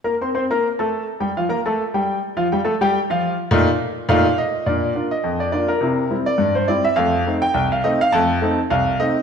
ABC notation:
X:1
M:2/4
L:1/16
Q:"Swing 16ths" 1/4=104
K:Bb
V:1 name="Grand piano"
[B,Bb] [Ccc'] [Ccc'] [B,Bb]2 [A,Aa]3 | [G,Gg] [F,Ff] [B,Bb] [A,Aa]2 [G,Gg]3 | [F,Ff] [G,Gg] [A,Aa] [G,Gg]2 [F,Ff]3 | [B,,A,EF]2 z2 [B,,A,EFf]2 e2 |
d3 e2 d d B- | B3 d2 c d =e | f3 g2 f e f | a4 f2 e2 |]
V:2 name="Grand piano"
z8 | z8 | z8 | z8 |
[B,,D]2 [B,DF]2 F,,2 [B,DF]2 | [C,=E]2 [G,CE]2 G,,2 [G,CE]2 | [F,,A,]2 [A,CE]2 C,,2 [A,CE]2 | [F,,A,]2 [A,CE]2 C,,2 [A,CE]2 |]